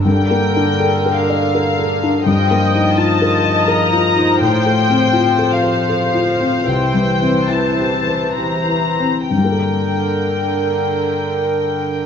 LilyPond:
<<
  \new Staff \with { instrumentName = "Violin section" } { \time 3/4 \key g \minor \tempo 4 = 78 g''4. f''4. | g''4 a''4 bes''4 | g''4. f''4. | g''4 a''4 bes''4 |
g''2. | }
  \new Staff \with { instrumentName = "Grand piano" } { \time 3/4 \key g \minor \tuplet 3/2 { g,8 bes8 d'8 a'8 bes'8 d''8 bes'8 a'8 d'8 } | \tuplet 3/2 { g,8 bes8 ees'8 f'8 bes'8 ees''8 bes'8 f'8 ees'8 } | \tuplet 3/2 { a,8 a8 c'8 f'8 a'8 c''8 a'8 f'8 c'8 } | \tuplet 3/2 { c,8 g8 c'8 e'8 g'8 c''8 g'8 e'8 c'8 } |
<g, g bes a'>2. | }
  \new Staff \with { instrumentName = "Viola section" } { \time 3/4 \key g \minor << { bes'2. | ees''2. | c''2.~ | c''2~ c''8 r8 |
bes'2. | } \\ { d2. | f2.~ | f2. | e2~ e8 r8 |
d2. | } >> }
>>